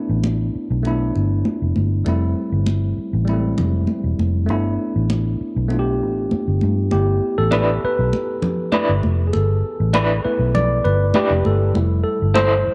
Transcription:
0.00 0.83 A3 medium
0.00 0.84 B3 medium
0.00 0.86 D4 medium
0.00 0.87 E4 medium
0.09 0.49 A1 medium
0.24 high conga medium
0.55 muted fingered electric bass stroke soft
0.70 1.10 B1 medium
0.83 1.97 A3 medium
0.83 1.98 B3 medium
0.83 1.98 D4 medium
0.83 muted conga soft
0.87 1.99 E4 medium
1.16 1.42 G1 medium
1.16 muted conga soft
1.45 high conga medium
1.62 1.75 F1 medium
1.76 2.03 G1 medium
1.76 high conga medium
2.05 2.33 F1 medium
2.05 3.18 G3 medium
2.05 3.19 A3 medium
2.05 3.20 C4 medium
2.05 3.20 E4 medium
2.05 muted conga soft
2.52 2.92 G1 medium
2.66 high conga medium
2.98 muted fingered electric bass stroke soft
3.13 3.53 A1 medium
3.25 4.39 G3 medium
3.25 3.34 G#3 soft
3.25 4.41 C4 medium
3.25 4.41 E4 medium
3.25 muted conga soft
3.33 4.43 A3 medium
3.58 3.85 F1 medium
3.58 low conga medium
3.87 high conga medium
4.04 4.17 E1 medium
4.19 4.49 F1 medium
4.19 high conga medium
4.46 4.76 G1 medium
4.46 5.61 A3 medium
4.46 5.61 B3 medium
4.46 5.62 D4 medium
4.46 5.63 E4 medium
4.46 muted conga soft
4.96 5.35 A1 medium
5.10 high conga medium
5.41 muted fingered electric bass stroke soft
5.56 6.03 B1 medium
5.68 6.82 A3 medium
5.68 6.83 B3 medium
5.68 6.83 D4 medium
5.68 muted conga soft
5.72 5.78 F4 medium
5.79 6.87 G4 medium
6.03 6.28 A1 medium
6.31 muted fingered electric bass stroke soft
6.31 high conga medium
6.48 6.60 G1 medium
6.61 6.89 G2 medium
6.61 high conga medium
6.91 7.19 G1 medium
6.91 9.30 A3 soft
6.91 9.30 B3 soft
6.91 9.30 E4 medium
6.91 7.39 G4 medium
6.91 muted conga soft
7.38 7.78 A1 medium
7.38 7.84 A4 medium
7.51 7.73 D4 medium
7.51 7.73 E4 medium
7.51 7.74 B4 medium
7.51 high conga medium
7.84 8.70 B4 medium
7.84 muted fingered electric bass stroke soft
7.99 8.12 B1 medium
8.13 muted conga soft
8.42 muted conga soft
8.42 low conga medium
8.72 8.94 D4 medium
8.72 8.94 E4 medium
8.72 8.95 B4 medium
8.72 high conga medium
8.89 9.02 G1 medium
9.03 9.31 F1 medium
9.03 high conga medium
9.27 9.34 G#4 medium
9.33 9.61 G1 medium
9.33 10.27 A4 medium
9.33 muted conga soft
9.80 10.20 A1 medium
9.93 10.15 D4 medium
9.93 10.16 E4 medium
9.93 10.16 B4 medium
9.93 high conga medium
10.24 11.11 A3 medium
10.24 11.11 B3 medium
10.24 11.12 E4 medium
10.24 10.56 B4 medium
10.24 muted fingered electric bass stroke soft
10.39 10.79 B1 medium
10.55 10.83 D5 loud
10.55 muted conga soft
10.55 low conga medium
10.84 11.12 G1 medium
10.84 11.16 B4 medium
10.84 muted conga soft
11.14 11.36 D4 medium
11.14 11.36 E4 medium
11.14 11.44 G4 medium
11.14 11.37 B4 medium
11.14 high conga medium
11.30 11.44 F1 medium
11.45 11.73 G1 medium
11.45 11.60 A4 medium
11.45 high conga medium
11.74 12.03 F1 medium
11.74 12.15 G3 medium
11.74 12.16 A3 soft
11.74 12.16 E4 medium
11.74 muted conga soft
12.04 12.33 A4 medium
12.22 12.62 G1 medium
12.34 12.57 E4 medium
12.34 12.57 A4 medium
12.34 12.74 C5 medium
12.34 12.57 C5 medium
12.34 high conga medium
12.67 muted fingered electric bass stroke soft

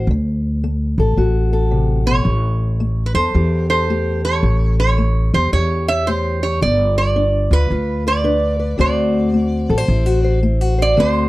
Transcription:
0.07 0.93 D2 medium
0.07 0.60 D3 medium
0.64 1.14 A3 medium
0.98 1.15 A1 medium
0.98 1.52 A4 medium
1.17 2.22 A1 medium
1.17 1.68 A2 medium
1.17 2.24 F#4 medium
1.53 3.16 A4 medium
1.71 2.06 C3 medium
2.06 2.23 B2 medium
2.06 3.02 C#5 medium
2.24 3.11 A1 medium
2.24 2.75 A2 medium
2.80 3.31 A3 medium
3.06 3.14 B4 medium
3.14 3.32 E2 medium
3.14 3.69 A4 medium
3.14 3.66 C5 medium
3.34 4.40 E2 medium
3.34 3.85 E3 medium
3.34 3.90 G4 medium
3.70 4.24 A4 medium
3.70 4.21 C5 medium
3.90 4.40 A3 medium
3.90 4.46 G4 medium
4.25 5.88 A4 medium
4.25 4.75 C#5 loud
4.43 5.29 A1 medium
4.43 4.94 A2 medium
4.80 5.34 C#5 medium
4.98 5.49 A3 medium
5.34 5.51 E2 medium
5.34 5.54 G4 medium
5.34 5.53 C5 medium
5.53 6.58 E2 medium
5.53 6.04 E3 medium
5.53 6.07 G4 medium
5.53 5.86 C#5 loud
5.88 6.60 C#5 medium
5.88 6.08 E5 loud
6.07 6.58 A3 medium
6.07 6.42 G4 medium
6.07 6.44 C5 medium
6.43 6.59 G4 medium
6.43 6.60 C#5 medium
6.61 7.48 G1 medium
6.61 7.12 G3 medium
6.61 6.95 D5 medium
6.98 7.54 D5 medium
7.16 7.67 D4 medium
7.51 7.68 D2 medium
7.51 7.70 F4 medium
7.51 8.03 B4 medium
7.70 8.75 D2 medium
7.70 8.22 D3 medium
7.70 8.78 F4 medium
8.07 8.23 B4 medium
8.07 8.79 D5 loud
8.24 8.75 D4 medium
8.24 8.58 B4 medium
8.60 8.77 B4 medium
8.78 9.65 D2 medium
8.78 9.29 D3 medium
8.78 9.32 A3 medium
8.78 10.97 C4 medium
8.78 9.88 F#4 medium
8.78 9.70 C5 medium
8.78 10.40 D5 medium
9.34 9.85 A3 medium
9.69 9.87 A1 medium
9.69 9.78 A4 medium
9.78 10.23 C5 medium
9.88 10.94 A1 medium
9.88 10.39 A2 medium
9.88 10.06 E4 medium
10.06 10.43 F#4 medium
10.24 10.77 C5 medium
10.43 10.94 A3 medium
10.43 10.61 E4 medium
10.61 10.97 F#4 soft
10.78 10.95 C5 medium
10.78 11.00 D5 loud
10.97 11.29 D2 medium
10.97 11.29 D3 medium
10.97 11.29 A3 medium
10.97 11.29 C4 medium
10.97 11.29 F#4 medium
10.97 11.29 C5 loud

